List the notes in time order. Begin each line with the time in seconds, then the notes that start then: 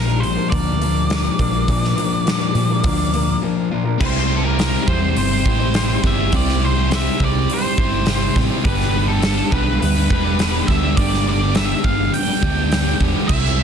Already playing: A#1 A#2 F3 A#4
0.07 A#3 D4 F4 A#4
0.20 A#2 C5, muted clean electric guitar stroke, open hi-hat
0.24 F3
0.35 A#3 D4 F4 A#4
0.50 D2 A#2 F3 A#3 D4 F4 A#4 D5, kick, open hi-hat
0.80 A#2 F3 A#3 D4 F4 A#4, open hi-hat
1.09 A#2 F3 A#3 D4 F4 A#4, snare, open hi-hat
1.24 A#3 D4 F4 A#4
1.39 A#1 A#2 F3 A#3 D4 F4 A#4, kick, open hi-hat
1.53 A#3 D4 F4 A#4
1.68 A#2 F3 A#3 D4 F4 A#4, kick, open hi-hat
1.84 snare
1.96 A#2 F3 A#3 D4 F4 A#4, open hi-hat
2.25 A#2 F3 A#3 D4 F4 A#4, snare, open hi-hat
2.40 A#3 D4 F4 A#4
2.55 A#2 F3, muted clean electric guitar stroke, open hi-hat
2.70 A#3 D4 F4 A#4
2.84 D2 A#2 F3 A#3 D4 F4 A#4, kick, open hi-hat
3.14 A#2 F3 A#3 D4 F4 A#4, open hi-hat
3.42 A#2 F3 A#3 D4 F4 A#4
3.57 A#3 D4 F4 A#4
3.70 A#2 F3 A#3 D4 F4 A#4
3.85 A#3 D4 F4 A#4
3.98 C2 C3 G3 C4 E4 G4 C5, kick, crash
4.17 snare
4.29 C4 E4 G4 C5
4.36 A4
4.43 C4 E4 G4 A#4 C5
4.58 C3 G3 C4 E4 G4 C5, snare, open hi-hat
4.87 E2 C4 E4 G4 C5, kick
5.00 C4 E4 G4 C5, muted distorted electric guitar stroke
5.16 G1 C5, open hi-hat
5.31 C4 E4 G4 C5, muted distorted electric guitar stroke
5.44 A1 C4 E4 G4 C5, kick
5.60 C4 E4 G4 C5
5.74 C3 G3 C4 E4 G4 C5, snare, open hi-hat
5.90 C4 E4 G4 C5
6.03 G1 C4 E4 G4 C5 E5, kick, snare
6.17 C4 E4 G4 C5
6.32 C2 C3 G3 C4 E4 G4 C5 D5, kick, open hi-hat
6.49 snare
6.62 C4 E4 G4 C5
6.75 C4 E4 G4 C5
6.90 C3 G3 C4 E4 G4 C5, snare, open hi-hat
6.95 E5
7.19 C2 C4 E4 G4 C5, kick
7.24 D5
7.35 C4 E4 G4 C5, muted distorted electric guitar stroke
7.50 open hi-hat
7.54 C5
7.64 C4 E4 G4 C5, muted distorted electric guitar stroke
7.77 G1 C4 E4 G4 C5, kick
7.92 C4 E4 G4 C5
8.06 C3 G3 C4 E4 G4 C5, snare, open hi-hat
8.21 C4 E4 G4 C5
8.35 A1 C4 E4 G4 C5, kick, snare
8.51 C4 E4 G4 C5
8.65 G1 G2 D3 G3 B3 D4 G4 B4, kick, open hi-hat
8.80 snare
8.94 G3 B3 D4 G4
9.08 G3 B3 D4 G4 A4
9.22 G2 D3 G3 B3 D4, snare, open hi-hat
9.27 G4
9.52 B1 G3 B3 D4 G4 B4, kick
9.65 G3 B3 D4 G4, muted distorted electric guitar stroke
9.80 D2 B4, open hi-hat
9.95 G3 B3 D4 G4, muted distorted electric guitar stroke
10.10 E1 G3 B3 D4 G4, kick
10.24 G3 B3 D4 G4
10.39 G2 D3 G3 B3 D4 G4, snare, open hi-hat
10.54 G3 B3 D4 G4
10.68 D2 G3 B3 D4 G4 E5, kick, snare
10.83 G3 B3 D4 G4
10.97 G1 G2 D3 G3 B3 D4 G4 D5, kick, open hi-hat
11.13 snare
11.26 G3 B3 D4 G4 D5
11.41 G3 B3 D4 G4
11.55 G2 D3 G3 B3 D4 G4 E5, snare, open hi-hat
11.84 G1 G3 B3 D4 G4 F5, kick
11.97 G3 B3 D4 G4, muted distorted electric guitar stroke
12.14 G5, open hi-hat
12.26 G3 B3 D4 G4, muted distorted electric guitar stroke
12.41 D2 G3 B3 D4 G4, kick
12.55 G3 B3 D4 G4
12.69 G2 D3 G3 B3 D4 G4, snare, open hi-hat
12.84 G3 B3 D4 G4
12.98 E1 G3 B3 D4 G4, kick
13.13 G3 B3 D4 G4
13.28 C2 C3 G3 C4 E4 G4 C5 E5, kick, crash
13.45 snare
13.58 C4 E4 G4 C5